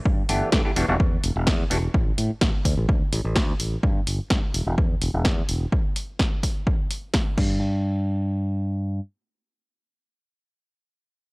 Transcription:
<<
  \new Staff \with { instrumentName = "Clav" } { \time 4/4 \key g \major \tempo 4 = 127 r8 <e a b d' g'>8 <e a b d' g'>16 <e a b d' g'>16 <e g b d' fis'>16 <e g b d' fis'>16 r4. <e g b d' fis'>16 r16 | r1 | r1 | r1 |
r1 | r1 | }
  \new Staff \with { instrumentName = "Fingered electric bass" } { \clef bass \time 4/4 \key g \major g,16 r16 g,,16 r16 g,16 r16 e,,16 e,,16 e,16 r16 e,,16 e,,16 e,16 r16 e,,16 r16 | a,,16 r16 a,16 r16 a,,16 r16 d,16 a,,16 d,16 r16 a,,16 a,,16 d,16 r16 a,,16 r16 | g,16 r16 g,,16 r16 g,16 r16 e,,16 e,,16 r8 e,,16 e,,16 e,16 r16 e,,16 r16 | r2. r8 g,8~ |
g,2. r4 | r1 | }
  \new DrumStaff \with { instrumentName = "Drums" } \drummode { \time 4/4 bd8 hho8 <bd sn>8 hho8 bd8 hho8 <bd sn>8 hho8 | bd8 hho8 <bd sn>8 <hho bd>8 bd8 hho8 <bd sn>8 hho8 | bd8 hho8 <bd sn>8 hho8 bd8 hho8 <bd sn>8 hho8 | bd8 hho8 <bd sn>8 <hho bd>8 bd8 hho8 <hho bd sn>8 <cymc bd>8 |
r4 r4 r4 r4 | r4 r4 r4 r4 | }
>>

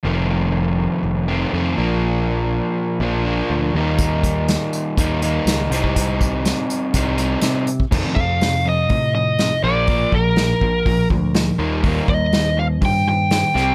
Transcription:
<<
  \new Staff \with { instrumentName = "Lead electric guitar" } { \time 4/4 \key f \mixolydian \tempo 4 = 122 r1 | r1 | r1 | r1 |
r8 f''4 ees''4 ees''4 d''8~ | d''8 bes'2 r4. | r8 ees''4 f''8 g''8 g''4. | }
  \new Staff \with { instrumentName = "Overdriven electric guitar" } { \clef bass \time 4/4 \key f \mixolydian <f, c ees a c'>2~ <f, c ees a c'>8 <f, c ees a c'>8 <f, c ees a c'>8 <bes, f bes d'>8~ | <bes, f bes d'>2 <bes, f bes d'>8 <bes, f bes d'>4 <ees g bes ees'>8~ | <ees g bes ees'>2 <ees g bes ees'>8 <ees g bes ees'>4 <c g c' ees'>8~ | <c g c' ees'>2 <c g c' ees'>8 <c g c' ees'>4 r8 |
<f, c ees>8 <f, c>8 <f, c>8 <f, c>8 <f, c>8 <f, c>8 <f, c>8 <bes, f bes>8 | <bes, f bes>8 <bes, f>8 <bes, f>8 <bes, f>8 <bes, f>8 <bes, f>8 <bes, f>8 <ees g bes>8 | <ees g bes>8 <ees g>8 <ees g>8 <ees g>8 <ees g>8 <ees g>8 <ees g>8 <c g c'>8 | }
  \new Staff \with { instrumentName = "Picked electric bass" } { \clef bass \time 4/4 \key f \mixolydian f,,2 f,,4 f,8 bes,,8~ | bes,,4. r8 bes,,4 d,8 ees,8~ | ees,4. r8 ees,4 des,8 c,8~ | c,4. r8 c,4 c4 |
f,16 r16 f,4. a,4. bes,,8~ | bes,,8 bes,,4 bes,,8 bes,,8 d,4 ees,8~ | ees,8 ees,4. g,4. c,8 | }
  \new DrumStaff \with { instrumentName = "Drums" } \drummode { \time 4/4 r4 r4 r4 r4 | r4 r4 r4 r4 | <hh bd>8 <hh bd>8 <hh sn>8 hh8 <hh bd>8 hh8 <hh sn>8 hh16 bd16 | <hh bd>8 <hh bd>8 <hh sn>8 hh8 <hh bd>8 hh8 <hh sn>8 hh16 bd16 |
<cymc bd>8 bd8 <hho sn>4 <hho bd>4 <hho sn>4 | <hho bd>8 bd8 <hho sn>8 bd8 <hho bd>8 bd8 <hho sn>4 | <hho bd>8 bd8 <hho sn>4 <hho bd>4 <hho sn>8 sn8 | }
>>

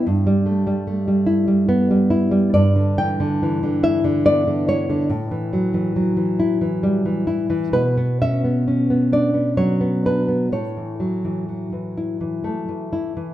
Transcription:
\new Staff \with { instrumentName = "Nylon-string guitar" } { \clef bass \time 3/4 \key e \dorian \tempo 4 = 68 << { e''2~ e''8 r8 | \key a \mixolydian d''8 g''4 e''8 d''8 cis''8~ | cis''2~ cis''8 r8 | b'8 e''4 d''8 cis''8 b'8 |
cis''2 r4 | } \\ { g,16 g16 a16 g16 a16 g16 e'16 g16 b16 g16 e'16 g16 | g,16 d16 e16 d16 e16 d16 e'16 d16 b16 d16 e'16 d16 | a,16 e16 fis16 e16 fis16 e16 e'16 e16 g16 e16 e'16 e16 | b,16 b16 cis'16 b16 cis'16 b16 d'16 b16 fis16 b16 d'16 b16 |
a,16 e16 fis16 e16 fis16 e16 e'16 e16 a16 e16 e'16 e16 | } >> }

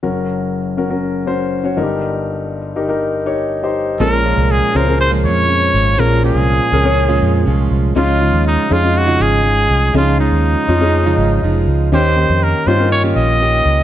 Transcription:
<<
  \new Staff \with { instrumentName = "Trumpet" } { \time 4/4 \key bes \minor \tempo 4 = 121 r1 | r1 | bes'4 aes'8 bes'8 c''8 des''4. | bes'8 aes'2. r8 |
f'4 ees'8 f'8 ges'8 aes'4. | f'8 ees'2. r8 | c''4 bes'8 c''8 des''8 ees''4. | }
  \new Staff \with { instrumentName = "Grand piano" } { \time 4/4 \key bes \minor <des' ges' bes'>4 r8 <des' ges' bes'>16 <des' ges' bes'>8 r16 <des' ges' c''>8 r16 <des' ges' des''>16 <ees' f' g' bes'>8~ | <ees' f' g' bes'>4 r8 <ees' g' bes'>16 <ees' g' bes'>8 r16 <ees' g' des''>8 r16 <ees' g' c''>8 r16 | <des' aes' bes'>4 r8 <des' aes' c''>16 <des' aes' bes'>4. r8. | <des' aes' bes'>4 r8 <des' aes' bes'>16 <des' aes' des''>4. r8. |
<des' ees' f'>4 r8 <des' ees' aes'>16 <des' ees' f'>4. r8. | <des' ees' aes'>4 r8 <des' ees' f'>16 <des' ees' aes'>4. r8. | <des' ees' g'>4 r8 <des' ees' f'>16 <des' ees' bes'>4. r8. | }
  \new Staff \with { instrumentName = "Grand piano" } { \clef bass \time 4/4 \key bes \minor <ges,, ges,>2.~ <ges,, ges,>8 <g,, g,>8~ | <g,, g,>2.~ <g,, g,>8 r8 | bes,4. r2 r8 | bes,4. r2 r8 |
des4. r2 r8 | des4. r2 r8 | ees4. r2 r8 | }
  \new Staff \with { instrumentName = "Steel-string acoustic guitar" } { \time 4/4 \key bes \minor r1 | r1 | <bes, f aes des' f'>8 <f aes des' f'>4 <f aes des' f'>8. <bes, f aes des' f'>8. <f aes des' f'>4 | <bes, f aes des' f'>8 <f aes des' f'>4 <f aes des' f'>8. <bes, f aes des' f'>8. <f aes des' f'>4 |
<des f aes ees' f'>8 <f aes ees' f'>4 <f aes ees' f'>8. <des f aes ees' f'>8. <f aes ees' f'>4 | <des f aes ees' f'>8 <f aes ees' f'>4 <f aes ees' f'>8. <des f aes ees' f'>8. <f aes ees' f'>4 | <ees bes des' g'>8 <ees bes des' g'>4 <ees bes des' g'>8. <ees bes des' g'>8. <ees bes des' g'>4 | }
  \new Staff \with { instrumentName = "Fingered electric bass" } { \clef bass \time 4/4 \key bes \minor r1 | r1 | bes,,8. c,8 r16 des,4 f,4 aes,,8 | bes,,8. c,8 r16 des,4 f,8 c,8 c,8 |
des,8. ees,8 r16 f,4 aes,,4 c,8 | des,8. ees,8 r16 f,4 aes,,8 f,,8 des,8 | ees,8. f,8 r16 g,4 bes,,4 des,8 | }
>>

